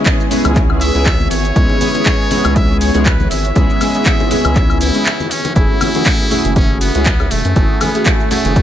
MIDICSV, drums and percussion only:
0, 0, Header, 1, 2, 480
1, 0, Start_track
1, 0, Key_signature, 3, "minor"
1, 0, Tempo, 500000
1, 1499, Time_signature, 4, 2, 24, 8
1, 8276, End_track
2, 0, Start_track
2, 0, Title_t, "Drums"
2, 57, Note_on_c, 9, 39, 118
2, 57, Note_on_c, 9, 62, 55
2, 58, Note_on_c, 9, 36, 103
2, 58, Note_on_c, 9, 42, 53
2, 60, Note_on_c, 9, 82, 46
2, 153, Note_off_c, 9, 39, 0
2, 153, Note_off_c, 9, 62, 0
2, 154, Note_off_c, 9, 36, 0
2, 154, Note_off_c, 9, 42, 0
2, 156, Note_off_c, 9, 82, 0
2, 194, Note_on_c, 9, 82, 33
2, 290, Note_off_c, 9, 82, 0
2, 297, Note_on_c, 9, 46, 105
2, 300, Note_on_c, 9, 82, 80
2, 307, Note_on_c, 9, 64, 74
2, 393, Note_off_c, 9, 46, 0
2, 396, Note_off_c, 9, 82, 0
2, 403, Note_off_c, 9, 64, 0
2, 428, Note_on_c, 9, 62, 72
2, 431, Note_on_c, 9, 42, 71
2, 431, Note_on_c, 9, 76, 84
2, 433, Note_on_c, 9, 82, 35
2, 435, Note_on_c, 9, 63, 65
2, 524, Note_off_c, 9, 62, 0
2, 527, Note_off_c, 9, 42, 0
2, 527, Note_off_c, 9, 76, 0
2, 529, Note_off_c, 9, 82, 0
2, 531, Note_off_c, 9, 63, 0
2, 536, Note_on_c, 9, 39, 35
2, 538, Note_on_c, 9, 36, 119
2, 538, Note_on_c, 9, 42, 52
2, 540, Note_on_c, 9, 82, 48
2, 632, Note_off_c, 9, 39, 0
2, 634, Note_off_c, 9, 36, 0
2, 634, Note_off_c, 9, 42, 0
2, 636, Note_off_c, 9, 82, 0
2, 671, Note_on_c, 9, 76, 68
2, 673, Note_on_c, 9, 62, 58
2, 767, Note_off_c, 9, 76, 0
2, 769, Note_off_c, 9, 62, 0
2, 777, Note_on_c, 9, 46, 103
2, 779, Note_on_c, 9, 82, 81
2, 873, Note_off_c, 9, 46, 0
2, 875, Note_off_c, 9, 82, 0
2, 911, Note_on_c, 9, 42, 66
2, 913, Note_on_c, 9, 82, 35
2, 1007, Note_off_c, 9, 42, 0
2, 1009, Note_off_c, 9, 82, 0
2, 1013, Note_on_c, 9, 62, 82
2, 1016, Note_on_c, 9, 39, 113
2, 1018, Note_on_c, 9, 36, 105
2, 1018, Note_on_c, 9, 42, 53
2, 1020, Note_on_c, 9, 82, 48
2, 1109, Note_off_c, 9, 62, 0
2, 1112, Note_off_c, 9, 39, 0
2, 1114, Note_off_c, 9, 36, 0
2, 1114, Note_off_c, 9, 42, 0
2, 1116, Note_off_c, 9, 82, 0
2, 1152, Note_on_c, 9, 63, 78
2, 1154, Note_on_c, 9, 82, 33
2, 1248, Note_off_c, 9, 63, 0
2, 1250, Note_off_c, 9, 82, 0
2, 1253, Note_on_c, 9, 62, 51
2, 1257, Note_on_c, 9, 46, 104
2, 1259, Note_on_c, 9, 82, 86
2, 1349, Note_off_c, 9, 62, 0
2, 1353, Note_off_c, 9, 46, 0
2, 1355, Note_off_c, 9, 82, 0
2, 1391, Note_on_c, 9, 42, 64
2, 1394, Note_on_c, 9, 82, 36
2, 1487, Note_off_c, 9, 42, 0
2, 1490, Note_off_c, 9, 82, 0
2, 1497, Note_on_c, 9, 42, 53
2, 1498, Note_on_c, 9, 36, 123
2, 1499, Note_on_c, 9, 82, 47
2, 1593, Note_off_c, 9, 42, 0
2, 1594, Note_off_c, 9, 36, 0
2, 1595, Note_off_c, 9, 82, 0
2, 1626, Note_on_c, 9, 62, 89
2, 1722, Note_off_c, 9, 62, 0
2, 1737, Note_on_c, 9, 46, 100
2, 1739, Note_on_c, 9, 63, 89
2, 1739, Note_on_c, 9, 82, 84
2, 1833, Note_off_c, 9, 46, 0
2, 1835, Note_off_c, 9, 63, 0
2, 1835, Note_off_c, 9, 82, 0
2, 1867, Note_on_c, 9, 62, 55
2, 1871, Note_on_c, 9, 42, 66
2, 1873, Note_on_c, 9, 82, 34
2, 1963, Note_off_c, 9, 62, 0
2, 1967, Note_off_c, 9, 42, 0
2, 1969, Note_off_c, 9, 82, 0
2, 1975, Note_on_c, 9, 39, 124
2, 1976, Note_on_c, 9, 42, 55
2, 1977, Note_on_c, 9, 36, 100
2, 1979, Note_on_c, 9, 82, 48
2, 2071, Note_off_c, 9, 39, 0
2, 2072, Note_off_c, 9, 42, 0
2, 2073, Note_off_c, 9, 36, 0
2, 2075, Note_off_c, 9, 82, 0
2, 2213, Note_on_c, 9, 64, 78
2, 2216, Note_on_c, 9, 46, 106
2, 2218, Note_on_c, 9, 82, 82
2, 2222, Note_on_c, 9, 62, 89
2, 2309, Note_off_c, 9, 64, 0
2, 2312, Note_off_c, 9, 46, 0
2, 2314, Note_off_c, 9, 82, 0
2, 2318, Note_off_c, 9, 62, 0
2, 2347, Note_on_c, 9, 63, 54
2, 2350, Note_on_c, 9, 42, 73
2, 2350, Note_on_c, 9, 76, 82
2, 2352, Note_on_c, 9, 82, 36
2, 2443, Note_off_c, 9, 63, 0
2, 2446, Note_off_c, 9, 42, 0
2, 2446, Note_off_c, 9, 76, 0
2, 2448, Note_off_c, 9, 82, 0
2, 2457, Note_on_c, 9, 42, 55
2, 2458, Note_on_c, 9, 36, 119
2, 2458, Note_on_c, 9, 62, 58
2, 2459, Note_on_c, 9, 82, 47
2, 2553, Note_off_c, 9, 42, 0
2, 2554, Note_off_c, 9, 36, 0
2, 2554, Note_off_c, 9, 62, 0
2, 2555, Note_off_c, 9, 82, 0
2, 2697, Note_on_c, 9, 46, 104
2, 2699, Note_on_c, 9, 82, 88
2, 2793, Note_off_c, 9, 46, 0
2, 2795, Note_off_c, 9, 82, 0
2, 2826, Note_on_c, 9, 62, 83
2, 2830, Note_on_c, 9, 42, 66
2, 2832, Note_on_c, 9, 82, 36
2, 2922, Note_off_c, 9, 62, 0
2, 2926, Note_off_c, 9, 42, 0
2, 2928, Note_off_c, 9, 82, 0
2, 2935, Note_on_c, 9, 39, 113
2, 2936, Note_on_c, 9, 42, 52
2, 2938, Note_on_c, 9, 36, 108
2, 2938, Note_on_c, 9, 82, 48
2, 3031, Note_off_c, 9, 39, 0
2, 3032, Note_off_c, 9, 42, 0
2, 3034, Note_off_c, 9, 36, 0
2, 3034, Note_off_c, 9, 82, 0
2, 3072, Note_on_c, 9, 62, 51
2, 3072, Note_on_c, 9, 63, 83
2, 3072, Note_on_c, 9, 82, 32
2, 3168, Note_off_c, 9, 62, 0
2, 3168, Note_off_c, 9, 63, 0
2, 3168, Note_off_c, 9, 82, 0
2, 3177, Note_on_c, 9, 46, 99
2, 3179, Note_on_c, 9, 82, 81
2, 3273, Note_off_c, 9, 46, 0
2, 3275, Note_off_c, 9, 82, 0
2, 3311, Note_on_c, 9, 42, 69
2, 3313, Note_on_c, 9, 82, 34
2, 3407, Note_off_c, 9, 42, 0
2, 3409, Note_off_c, 9, 82, 0
2, 3412, Note_on_c, 9, 62, 94
2, 3417, Note_on_c, 9, 36, 121
2, 3417, Note_on_c, 9, 42, 55
2, 3419, Note_on_c, 9, 82, 46
2, 3508, Note_off_c, 9, 62, 0
2, 3513, Note_off_c, 9, 36, 0
2, 3513, Note_off_c, 9, 42, 0
2, 3515, Note_off_c, 9, 82, 0
2, 3552, Note_on_c, 9, 82, 35
2, 3648, Note_off_c, 9, 82, 0
2, 3656, Note_on_c, 9, 63, 88
2, 3657, Note_on_c, 9, 46, 99
2, 3657, Note_on_c, 9, 76, 59
2, 3659, Note_on_c, 9, 82, 80
2, 3661, Note_on_c, 9, 62, 56
2, 3752, Note_off_c, 9, 63, 0
2, 3753, Note_off_c, 9, 46, 0
2, 3753, Note_off_c, 9, 76, 0
2, 3755, Note_off_c, 9, 82, 0
2, 3757, Note_off_c, 9, 62, 0
2, 3790, Note_on_c, 9, 42, 67
2, 3792, Note_on_c, 9, 82, 33
2, 3886, Note_off_c, 9, 42, 0
2, 3888, Note_off_c, 9, 82, 0
2, 3895, Note_on_c, 9, 39, 124
2, 3897, Note_on_c, 9, 36, 105
2, 3897, Note_on_c, 9, 42, 58
2, 3899, Note_on_c, 9, 82, 47
2, 3991, Note_off_c, 9, 39, 0
2, 3993, Note_off_c, 9, 36, 0
2, 3993, Note_off_c, 9, 42, 0
2, 3995, Note_off_c, 9, 82, 0
2, 4032, Note_on_c, 9, 82, 33
2, 4035, Note_on_c, 9, 62, 89
2, 4128, Note_off_c, 9, 82, 0
2, 4131, Note_off_c, 9, 62, 0
2, 4136, Note_on_c, 9, 46, 106
2, 4137, Note_on_c, 9, 64, 85
2, 4138, Note_on_c, 9, 82, 82
2, 4232, Note_off_c, 9, 46, 0
2, 4233, Note_off_c, 9, 64, 0
2, 4234, Note_off_c, 9, 82, 0
2, 4262, Note_on_c, 9, 62, 51
2, 4268, Note_on_c, 9, 63, 61
2, 4270, Note_on_c, 9, 42, 75
2, 4270, Note_on_c, 9, 76, 85
2, 4272, Note_on_c, 9, 82, 35
2, 4358, Note_off_c, 9, 62, 0
2, 4364, Note_off_c, 9, 63, 0
2, 4366, Note_off_c, 9, 42, 0
2, 4366, Note_off_c, 9, 76, 0
2, 4368, Note_off_c, 9, 82, 0
2, 4375, Note_on_c, 9, 39, 37
2, 4376, Note_on_c, 9, 42, 55
2, 4378, Note_on_c, 9, 36, 123
2, 4378, Note_on_c, 9, 82, 48
2, 4471, Note_off_c, 9, 39, 0
2, 4472, Note_off_c, 9, 42, 0
2, 4474, Note_off_c, 9, 36, 0
2, 4474, Note_off_c, 9, 82, 0
2, 4510, Note_on_c, 9, 76, 64
2, 4512, Note_on_c, 9, 82, 32
2, 4606, Note_off_c, 9, 76, 0
2, 4608, Note_off_c, 9, 82, 0
2, 4615, Note_on_c, 9, 46, 104
2, 4618, Note_on_c, 9, 82, 83
2, 4630, Note_on_c, 9, 62, 81
2, 4711, Note_off_c, 9, 46, 0
2, 4714, Note_off_c, 9, 82, 0
2, 4726, Note_off_c, 9, 62, 0
2, 4750, Note_on_c, 9, 42, 68
2, 4752, Note_on_c, 9, 82, 37
2, 4846, Note_off_c, 9, 42, 0
2, 4848, Note_off_c, 9, 82, 0
2, 4855, Note_on_c, 9, 39, 121
2, 4857, Note_on_c, 9, 42, 55
2, 4859, Note_on_c, 9, 82, 46
2, 4860, Note_on_c, 9, 62, 55
2, 4951, Note_off_c, 9, 39, 0
2, 4953, Note_off_c, 9, 42, 0
2, 4955, Note_off_c, 9, 82, 0
2, 4956, Note_off_c, 9, 62, 0
2, 4992, Note_on_c, 9, 63, 89
2, 4992, Note_on_c, 9, 82, 33
2, 5088, Note_off_c, 9, 63, 0
2, 5088, Note_off_c, 9, 82, 0
2, 5097, Note_on_c, 9, 46, 106
2, 5099, Note_on_c, 9, 82, 85
2, 5193, Note_off_c, 9, 46, 0
2, 5195, Note_off_c, 9, 82, 0
2, 5230, Note_on_c, 9, 42, 71
2, 5230, Note_on_c, 9, 62, 91
2, 5232, Note_on_c, 9, 82, 35
2, 5326, Note_off_c, 9, 42, 0
2, 5326, Note_off_c, 9, 62, 0
2, 5328, Note_off_c, 9, 82, 0
2, 5336, Note_on_c, 9, 42, 54
2, 5336, Note_on_c, 9, 62, 57
2, 5338, Note_on_c, 9, 36, 123
2, 5339, Note_on_c, 9, 82, 45
2, 5432, Note_off_c, 9, 42, 0
2, 5432, Note_off_c, 9, 62, 0
2, 5434, Note_off_c, 9, 36, 0
2, 5435, Note_off_c, 9, 82, 0
2, 5577, Note_on_c, 9, 46, 105
2, 5577, Note_on_c, 9, 76, 81
2, 5579, Note_on_c, 9, 82, 82
2, 5581, Note_on_c, 9, 63, 100
2, 5673, Note_off_c, 9, 46, 0
2, 5673, Note_off_c, 9, 76, 0
2, 5675, Note_off_c, 9, 82, 0
2, 5677, Note_off_c, 9, 63, 0
2, 5711, Note_on_c, 9, 42, 67
2, 5713, Note_on_c, 9, 82, 31
2, 5722, Note_on_c, 9, 62, 89
2, 5807, Note_off_c, 9, 42, 0
2, 5809, Note_off_c, 9, 82, 0
2, 5817, Note_on_c, 9, 39, 127
2, 5818, Note_off_c, 9, 62, 0
2, 5818, Note_on_c, 9, 36, 100
2, 5818, Note_on_c, 9, 42, 60
2, 5820, Note_on_c, 9, 82, 45
2, 5913, Note_off_c, 9, 39, 0
2, 5914, Note_off_c, 9, 36, 0
2, 5914, Note_off_c, 9, 42, 0
2, 5916, Note_off_c, 9, 82, 0
2, 5957, Note_on_c, 9, 62, 62
2, 6053, Note_off_c, 9, 62, 0
2, 6058, Note_on_c, 9, 46, 111
2, 6060, Note_on_c, 9, 82, 79
2, 6061, Note_on_c, 9, 64, 89
2, 6154, Note_off_c, 9, 46, 0
2, 6156, Note_off_c, 9, 82, 0
2, 6157, Note_off_c, 9, 64, 0
2, 6191, Note_on_c, 9, 42, 72
2, 6193, Note_on_c, 9, 82, 33
2, 6198, Note_on_c, 9, 63, 66
2, 6287, Note_off_c, 9, 42, 0
2, 6289, Note_off_c, 9, 82, 0
2, 6294, Note_off_c, 9, 63, 0
2, 6298, Note_on_c, 9, 36, 124
2, 6298, Note_on_c, 9, 42, 54
2, 6300, Note_on_c, 9, 62, 87
2, 6300, Note_on_c, 9, 82, 44
2, 6394, Note_off_c, 9, 36, 0
2, 6394, Note_off_c, 9, 42, 0
2, 6396, Note_off_c, 9, 62, 0
2, 6396, Note_off_c, 9, 82, 0
2, 6538, Note_on_c, 9, 46, 108
2, 6540, Note_on_c, 9, 82, 80
2, 6541, Note_on_c, 9, 62, 51
2, 6634, Note_off_c, 9, 46, 0
2, 6636, Note_off_c, 9, 82, 0
2, 6637, Note_off_c, 9, 62, 0
2, 6671, Note_on_c, 9, 42, 68
2, 6674, Note_on_c, 9, 82, 33
2, 6767, Note_off_c, 9, 42, 0
2, 6770, Note_off_c, 9, 82, 0
2, 6777, Note_on_c, 9, 39, 125
2, 6778, Note_on_c, 9, 36, 113
2, 6778, Note_on_c, 9, 42, 52
2, 6780, Note_on_c, 9, 82, 44
2, 6873, Note_off_c, 9, 39, 0
2, 6874, Note_off_c, 9, 36, 0
2, 6874, Note_off_c, 9, 42, 0
2, 6876, Note_off_c, 9, 82, 0
2, 6911, Note_on_c, 9, 62, 81
2, 6911, Note_on_c, 9, 76, 64
2, 6912, Note_on_c, 9, 63, 88
2, 6914, Note_on_c, 9, 82, 32
2, 7007, Note_off_c, 9, 62, 0
2, 7007, Note_off_c, 9, 76, 0
2, 7008, Note_off_c, 9, 63, 0
2, 7010, Note_off_c, 9, 82, 0
2, 7017, Note_on_c, 9, 46, 114
2, 7019, Note_on_c, 9, 82, 82
2, 7113, Note_off_c, 9, 46, 0
2, 7115, Note_off_c, 9, 82, 0
2, 7151, Note_on_c, 9, 42, 69
2, 7153, Note_on_c, 9, 62, 60
2, 7153, Note_on_c, 9, 82, 34
2, 7247, Note_off_c, 9, 42, 0
2, 7249, Note_off_c, 9, 62, 0
2, 7249, Note_off_c, 9, 82, 0
2, 7257, Note_on_c, 9, 42, 55
2, 7258, Note_on_c, 9, 36, 127
2, 7259, Note_on_c, 9, 82, 41
2, 7353, Note_off_c, 9, 42, 0
2, 7354, Note_off_c, 9, 36, 0
2, 7355, Note_off_c, 9, 82, 0
2, 7493, Note_on_c, 9, 62, 83
2, 7497, Note_on_c, 9, 46, 113
2, 7497, Note_on_c, 9, 76, 78
2, 7499, Note_on_c, 9, 82, 80
2, 7509, Note_on_c, 9, 63, 109
2, 7589, Note_off_c, 9, 62, 0
2, 7593, Note_off_c, 9, 46, 0
2, 7593, Note_off_c, 9, 76, 0
2, 7595, Note_off_c, 9, 82, 0
2, 7605, Note_off_c, 9, 63, 0
2, 7632, Note_on_c, 9, 42, 66
2, 7634, Note_on_c, 9, 82, 32
2, 7728, Note_off_c, 9, 42, 0
2, 7730, Note_off_c, 9, 82, 0
2, 7734, Note_on_c, 9, 62, 56
2, 7737, Note_on_c, 9, 39, 127
2, 7738, Note_on_c, 9, 36, 107
2, 7738, Note_on_c, 9, 42, 56
2, 7740, Note_on_c, 9, 82, 44
2, 7830, Note_off_c, 9, 62, 0
2, 7833, Note_off_c, 9, 39, 0
2, 7834, Note_off_c, 9, 36, 0
2, 7834, Note_off_c, 9, 42, 0
2, 7836, Note_off_c, 9, 82, 0
2, 7874, Note_on_c, 9, 82, 30
2, 7970, Note_off_c, 9, 82, 0
2, 7977, Note_on_c, 9, 46, 112
2, 7977, Note_on_c, 9, 64, 77
2, 7979, Note_on_c, 9, 82, 76
2, 8073, Note_off_c, 9, 46, 0
2, 8073, Note_off_c, 9, 64, 0
2, 8075, Note_off_c, 9, 82, 0
2, 8111, Note_on_c, 9, 42, 71
2, 8114, Note_on_c, 9, 82, 34
2, 8117, Note_on_c, 9, 63, 68
2, 8119, Note_on_c, 9, 62, 82
2, 8207, Note_off_c, 9, 42, 0
2, 8210, Note_off_c, 9, 82, 0
2, 8213, Note_off_c, 9, 63, 0
2, 8215, Note_off_c, 9, 62, 0
2, 8218, Note_on_c, 9, 36, 127
2, 8218, Note_on_c, 9, 42, 56
2, 8220, Note_on_c, 9, 82, 44
2, 8276, Note_off_c, 9, 36, 0
2, 8276, Note_off_c, 9, 42, 0
2, 8276, Note_off_c, 9, 82, 0
2, 8276, End_track
0, 0, End_of_file